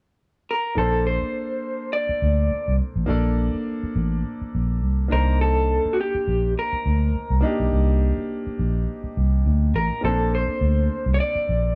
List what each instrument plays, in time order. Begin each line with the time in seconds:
0.51 clean electric guitar A#4
0.75 fingered electric bass A#1, grand piano A#3 D4 A4 C5, clean electric guitar A4
1.07 clean electric guitar C5
1.93 clean electric guitar D5
2.09 muted fingered electric bass stroke
2.22 fingered electric bass D2
2.51 muted fingered electric bass stroke
2.68 fingered electric bass C2
2.96 fingered electric bass A1
3.06 fingered electric bass A#1, grand piano A#3 D4 A4 D5
3.54 muted fingered electric bass stroke
3.83 muted fingered electric bass stroke
3.96 fingered electric bass A1
4.41 muted fingered electric bass stroke
4.55 fingered electric bass A#1
4.83 fingered electric bass C2
5.08 grand piano A#3 D4 D#4, clean electric guitar A#4
5.12 fingered electric bass C2, grand piano C5
5.41 clean electric guitar A4
5.85 muted fingered electric bass stroke
5.93 clean electric guitar F#4
6.01 clean electric guitar G4
6.15 muted fingered electric bass stroke
6.28 fingered electric bass A#1
6.59 clean electric guitar A#4
6.73 muted fingered electric bass stroke
6.86 fingered electric bass D2
7.15 muted fingered electric bass stroke
7.30 fingered electric bass C2
7.41 grand piano A#3 D4 D#4
7.45 grand piano G4
7.60 fingered electric bass B1
7.73 fingered electric bass C2
8.47 muted fingered electric bass stroke
8.59 fingered electric bass A#1
9.04 muted fingered electric bass stroke
9.17 fingered electric bass C2
9.46 fingered electric bass D2
9.74 fingered electric bass A1, clean electric guitar A#4
10.01 fingered electric bass A#1, grand piano A#3 C4 A4, clean electric guitar A4
10.05 grand piano D4 C5
10.35 clean electric guitar C5
10.48 muted fingered electric bass stroke
10.61 fingered electric bass D2
11.06 fingered electric bass C2
11.14 clean electric guitar C#5
11.20 clean electric guitar D5
11.35 muted fingered electric bass stroke
11.49 fingered electric bass A#1